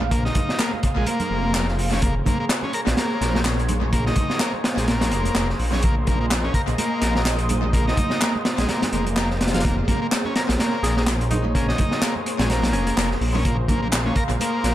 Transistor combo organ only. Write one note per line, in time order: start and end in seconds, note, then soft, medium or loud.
0.11 0.24 A#3 loud
0.25 0.58 D#4 medium
0.59 0.71 A#3 medium
0.97 1.06 G#3 medium
1.07 1.54 A#3 loud
1.55 1.67 A#3 loud
1.92 2.01 C#4 medium
2.03 2.15 A#3 medium
2.27 2.38 A#3 medium
2.40 2.45 A#3 medium
2.64 2.73 C#4 loud
2.74 2.81 A#4 medium
2.98 3.34 A#3 medium
3.35 3.40 A#3 loud
3.93 4.05 A#3 loud
4.07 4.39 D#4 medium
4.40 4.52 A#3 medium
4.78 4.87 G#3 medium
4.88 5.34 A#3 medium
5.36 5.48 A#3 loud
5.73 5.82 C#4 medium
5.83 5.95 A#3 medium
6.07 6.19 A#3 medium
6.21 6.26 A#3 loud
6.44 6.54 C#4 loud
6.55 6.62 A#4 medium
6.78 7.14 A#3 medium
7.16 7.21 A#3 loud
7.74 7.86 A#3 loud
7.87 8.20 D#4 medium
8.21 8.33 A#3 loud
8.59 8.68 G#3 medium
8.69 8.81 A#3 loud
8.93 9.05 A#3 medium
9.17 9.30 A#3 medium
9.54 9.63 F4 medium
9.64 9.76 A#3 medium
9.88 10.00 A#3 medium
10.02 10.07 A#3 loud
10.26 10.35 C#4 medium
10.36 10.43 A#4 medium
10.60 10.96 A#3 loud
10.97 11.02 A#3 loud
11.55 11.67 A#3 loud
11.68 12.01 D#4 medium
12.02 12.14 A#3 medium
12.40 12.49 G#3 medium
12.50 12.97 A#3 loud
12.98 13.10 A#3 loud
13.35 13.44 C#4 medium
13.45 13.57 A#3 medium
13.69 13.81 A#3 medium
13.82 13.88 A#3 loud
14.06 14.15 C#4 medium
14.17 14.24 A#4 medium
14.41 14.74 A#3 loud